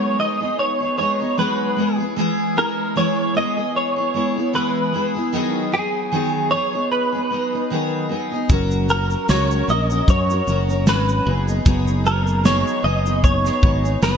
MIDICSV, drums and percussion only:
0, 0, Header, 1, 2, 480
1, 0, Start_track
1, 0, Key_signature, 5, "major"
1, 0, Tempo, 790514
1, 1319, Time_signature, 4, 2, 24, 8
1, 8604, End_track
2, 0, Start_track
2, 0, Title_t, "Drums"
2, 5159, Note_on_c, 9, 36, 108
2, 5159, Note_on_c, 9, 82, 85
2, 5220, Note_off_c, 9, 36, 0
2, 5220, Note_off_c, 9, 82, 0
2, 5289, Note_on_c, 9, 82, 60
2, 5350, Note_off_c, 9, 82, 0
2, 5399, Note_on_c, 9, 82, 51
2, 5460, Note_off_c, 9, 82, 0
2, 5528, Note_on_c, 9, 82, 51
2, 5589, Note_off_c, 9, 82, 0
2, 5639, Note_on_c, 9, 82, 79
2, 5641, Note_on_c, 9, 38, 124
2, 5700, Note_off_c, 9, 82, 0
2, 5702, Note_off_c, 9, 38, 0
2, 5774, Note_on_c, 9, 82, 57
2, 5835, Note_off_c, 9, 82, 0
2, 5883, Note_on_c, 9, 82, 55
2, 5944, Note_off_c, 9, 82, 0
2, 6012, Note_on_c, 9, 82, 73
2, 6073, Note_off_c, 9, 82, 0
2, 6120, Note_on_c, 9, 36, 96
2, 6125, Note_on_c, 9, 82, 67
2, 6181, Note_off_c, 9, 36, 0
2, 6186, Note_off_c, 9, 82, 0
2, 6255, Note_on_c, 9, 82, 64
2, 6316, Note_off_c, 9, 82, 0
2, 6361, Note_on_c, 9, 82, 61
2, 6422, Note_off_c, 9, 82, 0
2, 6495, Note_on_c, 9, 82, 52
2, 6556, Note_off_c, 9, 82, 0
2, 6600, Note_on_c, 9, 82, 79
2, 6601, Note_on_c, 9, 38, 127
2, 6660, Note_off_c, 9, 82, 0
2, 6661, Note_off_c, 9, 38, 0
2, 6732, Note_on_c, 9, 82, 59
2, 6793, Note_off_c, 9, 82, 0
2, 6972, Note_on_c, 9, 82, 57
2, 7033, Note_off_c, 9, 82, 0
2, 7080, Note_on_c, 9, 36, 113
2, 7082, Note_on_c, 9, 82, 78
2, 7141, Note_off_c, 9, 36, 0
2, 7143, Note_off_c, 9, 82, 0
2, 7211, Note_on_c, 9, 82, 60
2, 7271, Note_off_c, 9, 82, 0
2, 7322, Note_on_c, 9, 82, 54
2, 7383, Note_off_c, 9, 82, 0
2, 7450, Note_on_c, 9, 82, 56
2, 7511, Note_off_c, 9, 82, 0
2, 7560, Note_on_c, 9, 82, 82
2, 7562, Note_on_c, 9, 38, 127
2, 7621, Note_off_c, 9, 82, 0
2, 7623, Note_off_c, 9, 38, 0
2, 7695, Note_on_c, 9, 82, 55
2, 7755, Note_off_c, 9, 82, 0
2, 7931, Note_on_c, 9, 82, 69
2, 7991, Note_off_c, 9, 82, 0
2, 8038, Note_on_c, 9, 36, 96
2, 8042, Note_on_c, 9, 82, 68
2, 8099, Note_off_c, 9, 36, 0
2, 8103, Note_off_c, 9, 82, 0
2, 8170, Note_on_c, 9, 38, 37
2, 8173, Note_on_c, 9, 82, 65
2, 8231, Note_off_c, 9, 38, 0
2, 8234, Note_off_c, 9, 82, 0
2, 8275, Note_on_c, 9, 36, 108
2, 8336, Note_off_c, 9, 36, 0
2, 8411, Note_on_c, 9, 82, 54
2, 8472, Note_off_c, 9, 82, 0
2, 8516, Note_on_c, 9, 38, 127
2, 8516, Note_on_c, 9, 82, 78
2, 8576, Note_off_c, 9, 82, 0
2, 8577, Note_off_c, 9, 38, 0
2, 8604, End_track
0, 0, End_of_file